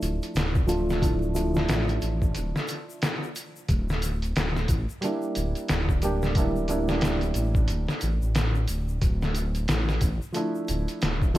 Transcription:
Already playing: F3 A3 D4 E4
0.02 D1, closed hi-hat, shaker
0.22 closed hi-hat, shaker
0.35 D1, snare, closed hi-hat, shaker
0.55 kick, shaker
0.67 F3 A3 D4 F4, closed hi-hat, shaker
0.89 snare, shaker
1.01 F3 A3 D4 E4, kick, closed hi-hat, shaker
1.22 shaker
1.34 F3 A3 D4 E4, closed hi-hat, shaker
1.53 F3 A3 D4, snare, shaker
1.57 E4
1.69 A1, snare, closed hi-hat, shaker
1.88 closed hi-hat, shaker
2.02 A1, closed hi-hat, shaker
2.22 kick, shaker
2.34 D1, closed hi-hat, shaker
2.56 snare, shaker
2.68 closed hi-hat, shaker
2.90 shaker
3.02 snare, closed hi-hat, shaker
3.23 shaker
3.36 closed hi-hat, shaker
3.56 shaker
3.68 D1, kick, closed hi-hat, shaker
3.89 snare, shaker
4.02 closed hi-hat, shaker
4.22 closed hi-hat, shaker
4.36 D1, snare, closed hi-hat, shaker
4.56 snare, shaker
4.68 A1, kick, closed hi-hat, shaker
4.89 shaker
5.01 G3 A#3 D4, closed hi-hat, shaker
5.05 E4
5.22 shaker
5.35 D1, closed hi-hat, shaker
5.55 closed hi-hat, shaker
5.68 D1, snare, closed hi-hat, shaker
5.89 kick, shaker
6.02 G3 A#3 D4 G4, closed hi-hat, shaker
6.22 snare, shaker
6.35 G3 A#3 D4 E4, kick, closed hi-hat, shaker
6.56 shaker
6.68 G3 A#3 D4 E4, closed hi-hat, shaker
6.88 G3 A#3 D4, snare, shaker
6.92 E4
7.01 D1, snare, closed hi-hat, shaker
7.21 closed hi-hat, shaker
7.34 A1, closed hi-hat, shaker
7.55 kick, shaker
7.68 D1, closed hi-hat, shaker
7.88 snare, shaker
8.01 A1, closed hi-hat, shaker
8.22 A1, shaker
8.35 snare, closed hi-hat, shaker
8.55 shaker
8.68 D1, closed hi-hat, shaker
8.88 shaker
9.01 D1, kick, closed hi-hat, shaker
9.22 snare, shaker
9.34 closed hi-hat, shaker
9.55 closed hi-hat, shaker
9.68 A1, snare, closed hi-hat, shaker
9.89 snare, shaker
10.01 A1, kick, closed hi-hat, shaker
10.22 shaker
10.32 F3 A3 D4, closed hi-hat, shaker
10.37 E4
10.55 shaker
10.68 D1, closed hi-hat, shaker
10.88 closed hi-hat, shaker
11.02 D1, snare, closed hi-hat, shaker
11.22 kick, shaker
11.34 F3 A3, closed hi-hat

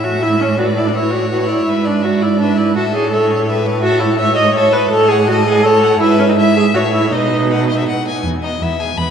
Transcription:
Already playing: A2 E5
0.04 F#4 C#5
0.22 E4 E5
0.40 C#4 C#5
0.58 F#4 B4 D5
0.77 E4 D5
0.87 D4
0.95 E4 B4 C#5
1.11 F#4 D5
1.31 F#4 B4
1.49 E4 D5
1.66 G#2 B4 E5
1.85 D4 D5
2.02 F#4 D5 E5
2.22 E4 D5
2.39 D4 B4 E5
2.58 E4 D5
2.75 A2 F#4 A4 E5
2.94 G#4 C#5
3.11 A4 C#5 E5
3.31 C#5
3.48 B4 E5
3.67 C#5
3.82 F#4 E5
3.86 A4
3.99 E4 C#5
4.19 C#5 E5
4.36 C#5 D#5
4.55 A4 C#5 E5
4.73 B4 C#5
4.91 A2 A4 C#5 A5
5.08 G#4 F#5
5.28 F#4 D#5 A5
5.45 G#4 F#5
5.64 A4 C#5 A5
5.84 F#5
6.00 G#2 E4 B4 E5
6.19 C#4
6.29 D#4
6.38 E4 E5
6.56 G#4
6.74 A2 F#4 C#5 E5
6.92 E4
7.11 B2 D#4 B4 D#5
7.50 F#5
7.69 D#5
7.79 E5
7.88 F#5
8.08 G#5
8.24 E2 B3
8.43 B3 D#4 D#5
8.61 E2 B3 E4 E5
8.80 B3 G#4 G#5
8.97 E2 B3 B4 B5

